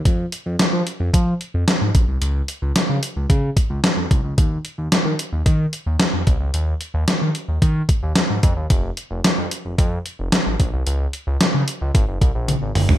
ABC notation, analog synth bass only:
X:1
M:4/4
L:1/16
Q:1/4=111
K:Abmix
V:1 name="Analog synth bass" clef=bass
F,,2 z F,, F, F, z F,, F,2 z F,, z A,, B,,, C,, | D,,2 z D,, z D, z D,, D,2 z D,, z F,, C,, D,, | E,,2 z E,, z E, z E,, E,2 z E,, z F,, C,, D,, | E,,2 z E,, z E, z E,, E,2 z E,, z A,, F,, E,, |
F,,,2 z F,,, z F,, z F,,, F,,2 z F,,, z A,,, B,,, C,, | D,,2 z D,, D, D, z D,, A,,, G,,, C,, B,,,2 A,,, F,,,2 |]